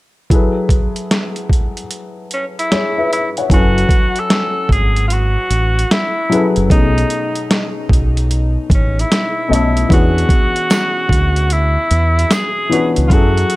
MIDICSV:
0, 0, Header, 1, 5, 480
1, 0, Start_track
1, 0, Key_signature, 3, "minor"
1, 0, Tempo, 800000
1, 179, Time_signature, 4, 2, 24, 8
1, 8137, End_track
2, 0, Start_track
2, 0, Title_t, "Tenor saxophone"
2, 0, Program_c, 0, 66
2, 1402, Note_on_c, 0, 61, 76
2, 1467, Note_off_c, 0, 61, 0
2, 1555, Note_on_c, 0, 64, 94
2, 1847, Note_off_c, 0, 64, 0
2, 1877, Note_on_c, 0, 64, 90
2, 1973, Note_off_c, 0, 64, 0
2, 2121, Note_on_c, 0, 66, 112
2, 2517, Note_on_c, 0, 69, 95
2, 2526, Note_off_c, 0, 66, 0
2, 2829, Note_off_c, 0, 69, 0
2, 2832, Note_on_c, 0, 68, 100
2, 3022, Note_off_c, 0, 68, 0
2, 3044, Note_on_c, 0, 65, 68
2, 3073, Note_on_c, 0, 66, 95
2, 3082, Note_off_c, 0, 65, 0
2, 3549, Note_on_c, 0, 64, 103
2, 3558, Note_off_c, 0, 66, 0
2, 3885, Note_off_c, 0, 64, 0
2, 4026, Note_on_c, 0, 63, 96
2, 4479, Note_off_c, 0, 63, 0
2, 5246, Note_on_c, 0, 61, 79
2, 5401, Note_on_c, 0, 64, 97
2, 5410, Note_off_c, 0, 61, 0
2, 5712, Note_off_c, 0, 64, 0
2, 5724, Note_on_c, 0, 64, 83
2, 5936, Note_off_c, 0, 64, 0
2, 5961, Note_on_c, 0, 66, 114
2, 6914, Note_on_c, 0, 64, 94
2, 6923, Note_off_c, 0, 66, 0
2, 7396, Note_on_c, 0, 68, 110
2, 7405, Note_off_c, 0, 64, 0
2, 7729, Note_off_c, 0, 68, 0
2, 7845, Note_on_c, 0, 65, 61
2, 7872, Note_on_c, 0, 66, 110
2, 7881, Note_off_c, 0, 65, 0
2, 8137, Note_off_c, 0, 66, 0
2, 8137, End_track
3, 0, Start_track
3, 0, Title_t, "Upright piano"
3, 0, Program_c, 1, 0
3, 179, Note_on_c, 1, 54, 64
3, 185, Note_on_c, 1, 64, 57
3, 192, Note_on_c, 1, 68, 59
3, 197, Note_on_c, 1, 69, 58
3, 205, Note_on_c, 1, 71, 74
3, 294, Control_c, 1, 64, 127
3, 1071, Note_off_c, 1, 54, 0
3, 1073, Note_off_c, 1, 64, 0
3, 1077, Note_off_c, 1, 68, 0
3, 1080, Note_off_c, 1, 69, 0
3, 1083, Note_off_c, 1, 71, 0
3, 1629, Note_on_c, 1, 73, 57
3, 1630, Note_on_c, 1, 68, 55
3, 1773, Note_off_c, 1, 68, 0
3, 1773, Note_off_c, 1, 73, 0
3, 1788, Note_on_c, 1, 76, 65
3, 1790, Note_on_c, 1, 71, 55
3, 2010, Note_off_c, 1, 76, 0
3, 2011, Note_off_c, 1, 71, 0
3, 2028, Note_on_c, 1, 78, 54
3, 2031, Note_on_c, 1, 73, 50
3, 2097, Note_on_c, 1, 54, 61
3, 2103, Note_on_c, 1, 61, 57
3, 2105, Control_c, 1, 64, 0
3, 2107, Note_on_c, 1, 64, 54
3, 2113, Note_on_c, 1, 80, 54
3, 2119, Note_on_c, 1, 69, 54
3, 2122, Note_on_c, 1, 71, 66
3, 2215, Control_c, 1, 64, 127
3, 2250, Note_off_c, 1, 78, 0
3, 2252, Note_off_c, 1, 73, 0
3, 2989, Note_off_c, 1, 54, 0
3, 2992, Note_off_c, 1, 61, 0
3, 2995, Note_off_c, 1, 64, 0
3, 2997, Note_off_c, 1, 80, 0
3, 3000, Note_off_c, 1, 69, 0
3, 3002, Note_off_c, 1, 71, 0
3, 3777, Note_on_c, 1, 54, 74
3, 3781, Note_on_c, 1, 61, 57
3, 3787, Note_on_c, 1, 64, 66
3, 3790, Note_on_c, 1, 68, 62
3, 3797, Note_on_c, 1, 69, 62
3, 3799, Note_on_c, 1, 71, 73
3, 4001, Note_off_c, 1, 54, 0
3, 4003, Note_off_c, 1, 61, 0
3, 4006, Note_off_c, 1, 64, 0
3, 4007, Note_off_c, 1, 68, 0
3, 4011, Note_off_c, 1, 69, 0
3, 4012, Note_off_c, 1, 71, 0
3, 4015, Note_on_c, 1, 47, 63
3, 4022, Note_on_c, 1, 57, 52
3, 4027, Control_c, 1, 64, 0
3, 4027, Note_on_c, 1, 61, 62
3, 4033, Note_on_c, 1, 63, 60
3, 4040, Note_on_c, 1, 68, 58
3, 4146, Control_c, 1, 64, 127
3, 4908, Note_off_c, 1, 47, 0
3, 4912, Note_off_c, 1, 57, 0
3, 4914, Note_off_c, 1, 61, 0
3, 4917, Note_off_c, 1, 63, 0
3, 4921, Note_off_c, 1, 68, 0
3, 5691, Note_on_c, 1, 47, 72
3, 5697, Note_on_c, 1, 57, 67
3, 5703, Note_on_c, 1, 61, 66
3, 5710, Note_on_c, 1, 75, 61
3, 5715, Note_on_c, 1, 69, 74
3, 5918, Note_off_c, 1, 47, 0
3, 5921, Note_off_c, 1, 57, 0
3, 5924, Note_off_c, 1, 61, 0
3, 5927, Note_off_c, 1, 75, 0
3, 5930, Note_off_c, 1, 69, 0
3, 5935, Note_on_c, 1, 52, 62
3, 5939, Note_on_c, 1, 59, 59
3, 5944, Note_on_c, 1, 61, 60
3, 5946, Control_c, 1, 64, 0
3, 5949, Note_on_c, 1, 62, 55
3, 5952, Note_on_c, 1, 66, 54
3, 5958, Note_on_c, 1, 68, 63
3, 6058, Control_c, 1, 64, 127
3, 6828, Note_off_c, 1, 52, 0
3, 6830, Note_off_c, 1, 59, 0
3, 6833, Note_off_c, 1, 61, 0
3, 6835, Note_off_c, 1, 62, 0
3, 6837, Note_off_c, 1, 66, 0
3, 6840, Note_off_c, 1, 68, 0
3, 7616, Note_on_c, 1, 52, 68
3, 7620, Note_on_c, 1, 59, 58
3, 7625, Note_on_c, 1, 61, 58
3, 7629, Note_on_c, 1, 62, 66
3, 7635, Note_on_c, 1, 66, 60
3, 7639, Note_on_c, 1, 71, 73
3, 7840, Note_off_c, 1, 52, 0
3, 7842, Note_off_c, 1, 59, 0
3, 7845, Note_off_c, 1, 61, 0
3, 7847, Note_off_c, 1, 62, 0
3, 7850, Note_off_c, 1, 66, 0
3, 7852, Note_off_c, 1, 71, 0
3, 7857, Note_on_c, 1, 54, 63
3, 7860, Note_on_c, 1, 61, 62
3, 7867, Control_c, 1, 64, 0
3, 7868, Note_on_c, 1, 64, 56
3, 7872, Note_on_c, 1, 68, 56
3, 7879, Note_on_c, 1, 69, 73
3, 7961, Control_c, 1, 64, 127
3, 8137, Note_off_c, 1, 54, 0
3, 8137, Note_off_c, 1, 61, 0
3, 8137, Note_off_c, 1, 64, 0
3, 8137, Note_off_c, 1, 68, 0
3, 8137, Note_off_c, 1, 69, 0
3, 8137, End_track
4, 0, Start_track
4, 0, Title_t, "Fingered electric bass"
4, 0, Program_c, 2, 33
4, 2103, Note_on_c, 2, 30, 97
4, 2299, Note_off_c, 2, 30, 0
4, 2820, Note_on_c, 2, 32, 86
4, 3215, Note_off_c, 2, 32, 0
4, 3302, Note_on_c, 2, 33, 78
4, 3499, Note_off_c, 2, 33, 0
4, 3943, Note_on_c, 2, 30, 92
4, 4009, Note_off_c, 2, 30, 0
4, 4024, Note_on_c, 2, 35, 112
4, 4220, Note_off_c, 2, 35, 0
4, 4741, Note_on_c, 2, 35, 83
4, 5136, Note_off_c, 2, 35, 0
4, 5224, Note_on_c, 2, 33, 92
4, 5420, Note_off_c, 2, 33, 0
4, 5706, Note_on_c, 2, 35, 86
4, 5901, Note_off_c, 2, 35, 0
4, 5945, Note_on_c, 2, 40, 104
4, 6141, Note_off_c, 2, 40, 0
4, 6660, Note_on_c, 2, 38, 76
4, 7055, Note_off_c, 2, 38, 0
4, 7146, Note_on_c, 2, 40, 83
4, 7341, Note_off_c, 2, 40, 0
4, 7786, Note_on_c, 2, 37, 84
4, 7851, Note_off_c, 2, 37, 0
4, 7864, Note_on_c, 2, 42, 87
4, 8060, Note_off_c, 2, 42, 0
4, 8137, End_track
5, 0, Start_track
5, 0, Title_t, "Drums"
5, 181, Note_on_c, 9, 36, 97
5, 188, Note_on_c, 9, 42, 74
5, 241, Note_off_c, 9, 36, 0
5, 248, Note_off_c, 9, 42, 0
5, 415, Note_on_c, 9, 36, 81
5, 422, Note_on_c, 9, 42, 66
5, 475, Note_off_c, 9, 36, 0
5, 482, Note_off_c, 9, 42, 0
5, 576, Note_on_c, 9, 42, 39
5, 636, Note_off_c, 9, 42, 0
5, 666, Note_on_c, 9, 38, 99
5, 668, Note_on_c, 9, 42, 75
5, 726, Note_off_c, 9, 38, 0
5, 728, Note_off_c, 9, 42, 0
5, 816, Note_on_c, 9, 42, 33
5, 876, Note_off_c, 9, 42, 0
5, 897, Note_on_c, 9, 36, 66
5, 917, Note_on_c, 9, 42, 61
5, 957, Note_off_c, 9, 36, 0
5, 977, Note_off_c, 9, 42, 0
5, 1062, Note_on_c, 9, 42, 39
5, 1122, Note_off_c, 9, 42, 0
5, 1144, Note_on_c, 9, 42, 66
5, 1204, Note_off_c, 9, 42, 0
5, 1385, Note_on_c, 9, 42, 62
5, 1445, Note_off_c, 9, 42, 0
5, 1555, Note_on_c, 9, 42, 41
5, 1615, Note_off_c, 9, 42, 0
5, 1631, Note_on_c, 9, 38, 91
5, 1632, Note_on_c, 9, 42, 64
5, 1691, Note_off_c, 9, 38, 0
5, 1692, Note_off_c, 9, 42, 0
5, 1876, Note_on_c, 9, 42, 65
5, 1936, Note_off_c, 9, 42, 0
5, 2022, Note_on_c, 9, 42, 51
5, 2082, Note_off_c, 9, 42, 0
5, 2100, Note_on_c, 9, 36, 112
5, 2108, Note_on_c, 9, 42, 87
5, 2160, Note_off_c, 9, 36, 0
5, 2168, Note_off_c, 9, 42, 0
5, 2267, Note_on_c, 9, 42, 37
5, 2327, Note_off_c, 9, 42, 0
5, 2334, Note_on_c, 9, 36, 91
5, 2343, Note_on_c, 9, 42, 65
5, 2394, Note_off_c, 9, 36, 0
5, 2403, Note_off_c, 9, 42, 0
5, 2494, Note_on_c, 9, 42, 44
5, 2554, Note_off_c, 9, 42, 0
5, 2582, Note_on_c, 9, 38, 112
5, 2583, Note_on_c, 9, 42, 72
5, 2642, Note_off_c, 9, 38, 0
5, 2643, Note_off_c, 9, 42, 0
5, 2815, Note_on_c, 9, 36, 65
5, 2835, Note_on_c, 9, 42, 53
5, 2875, Note_off_c, 9, 36, 0
5, 2895, Note_off_c, 9, 42, 0
5, 2979, Note_on_c, 9, 42, 40
5, 3039, Note_off_c, 9, 42, 0
5, 3062, Note_on_c, 9, 42, 66
5, 3122, Note_off_c, 9, 42, 0
5, 3303, Note_on_c, 9, 42, 61
5, 3363, Note_off_c, 9, 42, 0
5, 3472, Note_on_c, 9, 42, 46
5, 3532, Note_off_c, 9, 42, 0
5, 3548, Note_on_c, 9, 38, 105
5, 3549, Note_on_c, 9, 42, 69
5, 3608, Note_off_c, 9, 38, 0
5, 3609, Note_off_c, 9, 42, 0
5, 3794, Note_on_c, 9, 42, 67
5, 3854, Note_off_c, 9, 42, 0
5, 3936, Note_on_c, 9, 42, 51
5, 3996, Note_off_c, 9, 42, 0
5, 4020, Note_on_c, 9, 36, 118
5, 4027, Note_on_c, 9, 42, 80
5, 4080, Note_off_c, 9, 36, 0
5, 4087, Note_off_c, 9, 42, 0
5, 4187, Note_on_c, 9, 42, 37
5, 4247, Note_off_c, 9, 42, 0
5, 4261, Note_on_c, 9, 42, 67
5, 4321, Note_off_c, 9, 42, 0
5, 4413, Note_on_c, 9, 42, 47
5, 4473, Note_off_c, 9, 42, 0
5, 4504, Note_on_c, 9, 38, 101
5, 4506, Note_on_c, 9, 42, 72
5, 4564, Note_off_c, 9, 38, 0
5, 4566, Note_off_c, 9, 42, 0
5, 4737, Note_on_c, 9, 36, 72
5, 4759, Note_on_c, 9, 42, 61
5, 4797, Note_off_c, 9, 36, 0
5, 4819, Note_off_c, 9, 42, 0
5, 4903, Note_on_c, 9, 42, 39
5, 4963, Note_off_c, 9, 42, 0
5, 4985, Note_on_c, 9, 42, 61
5, 5045, Note_off_c, 9, 42, 0
5, 5219, Note_on_c, 9, 36, 95
5, 5228, Note_on_c, 9, 42, 64
5, 5279, Note_off_c, 9, 36, 0
5, 5288, Note_off_c, 9, 42, 0
5, 5396, Note_on_c, 9, 42, 41
5, 5456, Note_off_c, 9, 42, 0
5, 5470, Note_on_c, 9, 38, 99
5, 5472, Note_on_c, 9, 42, 82
5, 5530, Note_off_c, 9, 38, 0
5, 5532, Note_off_c, 9, 42, 0
5, 5719, Note_on_c, 9, 42, 69
5, 5779, Note_off_c, 9, 42, 0
5, 5861, Note_on_c, 9, 42, 47
5, 5921, Note_off_c, 9, 42, 0
5, 5941, Note_on_c, 9, 36, 115
5, 5952, Note_on_c, 9, 42, 83
5, 6001, Note_off_c, 9, 36, 0
5, 6012, Note_off_c, 9, 42, 0
5, 6109, Note_on_c, 9, 42, 37
5, 6169, Note_off_c, 9, 42, 0
5, 6174, Note_on_c, 9, 36, 87
5, 6181, Note_on_c, 9, 42, 64
5, 6234, Note_off_c, 9, 36, 0
5, 6241, Note_off_c, 9, 42, 0
5, 6335, Note_on_c, 9, 42, 45
5, 6395, Note_off_c, 9, 42, 0
5, 6421, Note_on_c, 9, 54, 65
5, 6425, Note_on_c, 9, 38, 105
5, 6426, Note_on_c, 9, 42, 76
5, 6481, Note_off_c, 9, 54, 0
5, 6485, Note_off_c, 9, 38, 0
5, 6486, Note_off_c, 9, 42, 0
5, 6655, Note_on_c, 9, 36, 67
5, 6675, Note_on_c, 9, 42, 60
5, 6715, Note_off_c, 9, 36, 0
5, 6735, Note_off_c, 9, 42, 0
5, 6818, Note_on_c, 9, 42, 40
5, 6878, Note_off_c, 9, 42, 0
5, 6901, Note_on_c, 9, 42, 70
5, 6961, Note_off_c, 9, 42, 0
5, 7144, Note_on_c, 9, 42, 61
5, 7204, Note_off_c, 9, 42, 0
5, 7313, Note_on_c, 9, 42, 38
5, 7373, Note_off_c, 9, 42, 0
5, 7384, Note_on_c, 9, 38, 97
5, 7385, Note_on_c, 9, 42, 73
5, 7388, Note_on_c, 9, 54, 66
5, 7444, Note_off_c, 9, 38, 0
5, 7445, Note_off_c, 9, 42, 0
5, 7448, Note_off_c, 9, 54, 0
5, 7635, Note_on_c, 9, 42, 65
5, 7695, Note_off_c, 9, 42, 0
5, 7778, Note_on_c, 9, 42, 54
5, 7838, Note_off_c, 9, 42, 0
5, 7860, Note_on_c, 9, 36, 122
5, 7867, Note_on_c, 9, 42, 82
5, 7920, Note_off_c, 9, 36, 0
5, 7927, Note_off_c, 9, 42, 0
5, 8025, Note_on_c, 9, 42, 36
5, 8085, Note_off_c, 9, 42, 0
5, 8098, Note_on_c, 9, 42, 66
5, 8137, Note_off_c, 9, 42, 0
5, 8137, End_track
0, 0, End_of_file